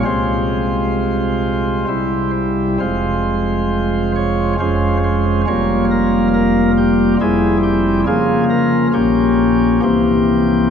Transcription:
<<
  \new Staff \with { instrumentName = "Pipe organ" } { \time 3/4 \key f \minor \tempo 4 = 68 c''2~ c''8 r8 | c''4. des''8 c''8 c''8 | des''8 bes'8 bes'8 g'8 aes'8 g'8 | aes'8 bes'8 g'4 g'4 | }
  \new Staff \with { instrumentName = "Pipe organ" } { \clef bass \time 3/4 \key f \minor <c, c aes c' f'>2 <c, c g c' e'>4 | <f,, f, aes c' f'>2 <f,, f, aes des' f'>4 | <f,, f, g bes f'>2 <f,, f, g c' e'>4 | <des f bes f'>4 <bes,, bes, f bes des'>4 <c, c e bes c'>4 | }
>>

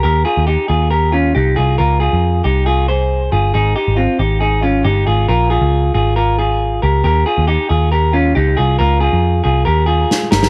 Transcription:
<<
  \new Staff \with { instrumentName = "Clean electric guitar" } { \time 4/4 \key ees \mixolydian \tempo 4 = 137 <g' bes'>8 <f' aes'>8 <ees' g'>8 <f' aes'>8 <g' bes'>8 <des' f'>8 <ees' g'>8 <f' aes'>8 | <f' bes'>8 <f' aes'>4 <ees' g'>8 <f' aes'>8 <aes' c''>4 <f' aes'>8 | <ees' aes'>8 <ees' g'>8 <c' f'>8 <ees' g'>8 <ees' aes'>8 <des' f'>8 <ees' g'>8 <f' aes'>8 | <f' bes'>8 <f' aes'>4 <f' aes'>8 <f' bes'>8 <f' aes'>4 <g' bes'>8 |
<g' bes'>8 <f' aes'>8 <ees' g'>8 <f' aes'>8 <g' bes'>8 <des' f'>8 <ees' g'>8 <f' aes'>8 | <f' bes'>8 <f' aes'>4 <f' aes'>8 <g' bes'>8 <f' aes'>4 <g' bes'>8 | }
  \new Staff \with { instrumentName = "Picked electric bass" } { \clef bass \time 4/4 \key ees \mixolydian ees,8 r16 ees,8 r16 ees,4. c,8 c,8 | des,8. f,8. c,2 g,,8 | aes,,8 r16 aes,,8 r16 aes,,4. g,,8 aes,,8 | bes,,8. des,8. aes,,2 des,8 |
ees,8 r16 ees,8 r16 ees,4. des,8 c,8 | des,8. f,8. c,8 ees,4 r8 g,,8 | }
  \new DrumStaff \with { instrumentName = "Drums" } \drummode { \time 4/4 r4 r4 r4 r4 | r4 r4 r4 r4 | r4 r4 r4 r4 | r4 r4 r4 r4 |
r4 r4 r4 r4 | r4 r4 r4 sn8 sn16 sn16 | }
>>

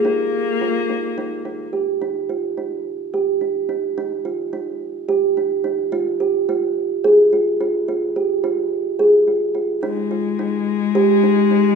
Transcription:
<<
  \new Staff \with { instrumentName = "Kalimba" } { \time 7/8 \key ees \major \tempo 4 = 107 ees'4 f'8 ees'8 ees'8 ees'8 g'8 | ees'8 f'8 ees'4 g'8 ees'8 ees'8 | ees'8 f'8 ees'4 g'8 ees'8 ees'8 | f'8 g'8 f'4 aes'8 f'8 f'8 |
f'8 g'8 f'4 aes'8 f'8 f'8 | ees'8 f'8 ees'4 g'8 ees'8 ees'8 | }
  \new Staff \with { instrumentName = "Viola" } { \time 7/8 \key ees \major bes2. r8 | r2. r8 | r2. r8 | r2. r8 |
r2. r8 | aes2.~ aes8 | }
>>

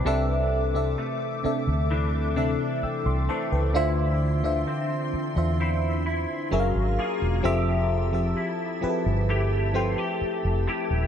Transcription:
<<
  \new Staff \with { instrumentName = "Ambient pad" } { \time 4/4 \key c \major \tempo 4 = 65 << { <a' d'''>1 | <d' c'''>2. <gis' ais''>4 | <g' a''>1 | } \\ { e''1~ | e''2. eis''4 | e''1 | } >> }
  \new Staff \with { instrumentName = "FM electric piano" } { \time 4/4 \key c \major << { <b' g''>16 r2 r8. <g'' e'''>16 <e'' c'''>16 <c'' a''>16 <b' g''>16~ | <b' g''>16 r2. r8. | r1 | } \\ { <c c' d' a' e''>8 r16 <c c' d' a' e''>8 r16 <c c' d' a' e''>8. r16 <c c' d' a' e''>4~ <c c' d' a' e''>16 r16 | <d d' f' c'' e''>8 r16 <d d' f' c'' e''>8. r16 <d d' f' c'' e''>4~ <d d' f' c'' e''>16 <fis cis' gis' ais' e'' eis''>8. r16 | <f c' g' a' e''>8 r16 <f c' g' a' e''>8 r16 <f c' g' aes' a' b'>8. r16 <f c' g' a' g''>4~ <f c' g' a' g''>16 r16 | } >> }
  \new Staff \with { instrumentName = "Clean electric guitar" } { \time 4/4 \key c \major <c d'>4 a4 <e a d'>8 d'4 <e a d'>8 | <d e'>4 c'4 <c' e'>8 e'8 fis8 <ais eis' gis'>8 | <f g'>4 e'4 <a e' g'>8 f'16 g'8. <a e' g'>8 | }
  \new Staff \with { instrumentName = "Fingered electric bass" } { \clef bass \time 4/4 \key c \major c,4 r8. d,4 r8 c,16 r16 des,16 | d,4 r8. e,4 r16 fis,,16 gis,,16 r16 e,,16 | f,,4 r8. g,,4 r8 f,,16 r16 ees,,16 | }
>>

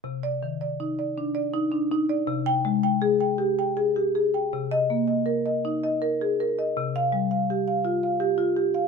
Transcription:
\new Staff \with { instrumentName = "Marimba" } { \time 6/8 \key c \minor \tempo 4. = 54 << { r16 d''8 r2 r16 | r16 g''8 r2 r16 | r16 ees''8 r2 r16 | r16 f''8 r2 r16 | } \\ { c8 ees16 d''16 ees'16 d''16 d'16 d''16 ees'16 d'16 ees'16 d''16 | c8 aes16 g''16 aes'16 g''16 g'16 g''16 aes'16 g'16 aes'16 g''16 | c8 bes16 ees''16 bes'16 ees''16 ees'16 ees''16 bes'16 aes'16 bes'16 ees''16 | c8 g16 f''16 g'16 f''16 f'16 f''16 g'16 f'16 g'16 f''16 | } >> }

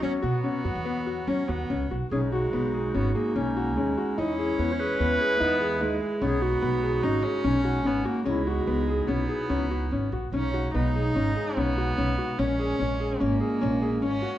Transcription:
<<
  \new Staff \with { instrumentName = "Clarinet" } { \time 5/4 \key b \major \tempo 4 = 146 r1 r4 | gis'8 fis'2~ fis'8 cis'2 | e'4~ \tuplet 3/2 { e'8 cis''16 b'8.~ } b'2~ b'8 r8 | gis'8 fis'2~ fis'8 cis'2 |
e'8 fis'4 r2. r8 | r1 r4 | r1 r4 | }
  \new Staff \with { instrumentName = "Grand piano" } { \time 5/4 \key b \major cis'8 fis'8 cis'8 fis'8 b8 fis'8 cis'8 fis'8 cis'8 fis'8 | cis'8 fis'8 b8 gis'8 cis'8 gis'8 cis'8 fis'8 cis'8 fis'8 | dis'8 gis'8 b8 gis'8 b8 gis'8 dis'8 gis'8 dis'8 gis'8 | cis'8 fis'8 b8 gis'8 cis'8 gis'8 cis'8 fis'8 cis'8 fis'8 |
cis'8 fis'8 b8 gis'8 cis'8 gis'8 cis'8 fis'8 cis'8 fis'8 | cis'8 fis'8 b8 gis'8 cis'8 gis'8 cis'8 fis'8 cis'8 fis'8 | cis'8 gis'8 cis'8 gis'8 cis'8 gis'8 cis'8 gis'8 cis'8 fis'8 | }
  \new Staff \with { instrumentName = "Viola" } { \time 5/4 \key b \major cis'8 b2~ b8 cis'8 b4 r8 | gis2 b8 ais4. gis4 | cis'2. b4 gis4 | b2 dis'8 cis'4. b8 ais8 |
gis2 b2~ b8 r8 | cis'4 dis'2 b2 | cis'2 ais2 cis'4 | }
  \new Staff \with { instrumentName = "Woodwind section" } { \time 5/4 \key b \major << { <fis fis'>1~ <fis fis'>4 | <cis dis'>1~ <cis dis'>4 | <e e'>1~ <e e'>4 | <cis dis'>1~ <cis dis'>4 |
<fis dis' e'>1~ <fis dis' e'>4 | <cis dis'>1~ <cis dis'>4 | <ais, cis'>1~ <ais, cis'>4 | } \\ { b1~ b4 | gis1~ gis4~ | gis1~ gis4~ | gis1~ gis4 |
b1~ b4 | gis1~ gis4 | gis1~ gis4 | } >> }
  \new Staff \with { instrumentName = "Upright bass" } { \clef bass \time 5/4 \key b \major fis8 b,8 r8 fis,16 e,4~ e,16 fis16 r16 dis,8 cis,8 b,,8 | b,,4 b,,4 gis,,8 r8 b,,4 dis,8 r8 | e,4 e,4 dis,8 r8 e,4 dis,8 r8 | b,,4 b,,4 gis,,8 r8 b,,4 gis,,8 r8 |
cis,4 cis,4 b,,8 r8 cis,4 gis,,8 ais,,8 | b,,4 b,,4 gis,,8 r8 b,,4 b,,8 r8 | ais,,4 ais,,4 gis,,8 r8 ais,,4 gis,,8 r8 | }
>>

